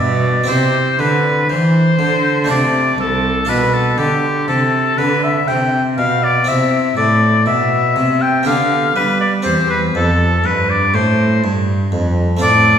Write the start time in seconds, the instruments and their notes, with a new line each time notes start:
Already playing: harpsichord B2 C4 E4 G4, cello B2, oboe D5
0.44 harpsichord C4 E4 G4
0.48 harpsichord C3, cello C3, oboe C5
0.99 harpsichord D3, cello D3, oboe B4
1.49 harpsichord E3, cello E3, oboe C5
1.99 harpsichord D3, cello D3
2.44 harpsichord A3 D4 F4
2.49 harpsichord C3, cello C3, oboe D5
2.98 harpsichord C2, cello C2, oboe A4
3.45 harpsichord B2 D4 F4, cello B2
3.49 oboe B4
3.74 oboe A4
3.98 harpsichord D3, cello D3, oboe G4
4.48 cello C3, harpsichord C3, oboe A4
4.97 cello D3, harpsichord D3, oboe B4
5.23 oboe E5
5.48 cello C3, harpsichord C3, oboe G5
5.97 cello B2, harpsichord B2, oboe F5
6.23 oboe D5
6.44 cello C3, harpsichord C3 C4 E4, oboe E5
6.97 harpsichord A2, cello A2, oboe D5
7.46 harpsichord B2, cello B2, oboe E5
7.96 cello C3, harpsichord C3
8.22 oboe G5
8.43 cello D3, harpsichord D3 B3 G4, oboe F5
8.95 cello G3, harpsichord G3, oboe B4
9.20 oboe D5
9.42 harpsichord E2 C4 G4, cello E2, oboe C5
9.70 oboe B4
9.95 cello F2, harpsichord F2, oboe A4
10.44 harpsichord G2, cello G2, oboe B4
10.70 oboe D5
10.94 cello A2, harpsichord A2, oboe C5
11.43 cello G2, harpsichord G2
11.92 cello F2, harpsichord F2
12.37 harpsichord A3 C4 F4
12.41 harpsichord A2, cello A2, oboe D5